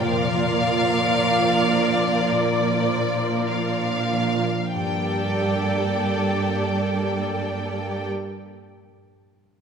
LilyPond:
<<
  \new Staff \with { instrumentName = "Violin section" } { \time 4/4 \key g \minor \tempo 4 = 49 f''2 d''4 f''4 | g''1 | }
  \new Staff \with { instrumentName = "Violin section" } { \time 4/4 \key g \minor <bes' d''>1 | <a' d''>1 | }
  \new Staff \with { instrumentName = "Harp" } { \time 4/4 \key g \minor << { <bes, f' f''>16 f16 f'16 f''16 f'16 d'16 f16 d'16 bes,16 f16 f'16 f''16 f'16 d'16 f16 d'16~ | d'1 | } \\ { r1 | <g, g bes d' g' g''>1 | } >> }
  \new Staff \with { instrumentName = "Viola section" } { \time 4/4 \key g \minor <f f'>1 | <bes g'>1 | }
  \new Staff \with { instrumentName = "Cello section" } { \clef bass \time 4/4 \key g \minor bes,1 | g,1 | }
>>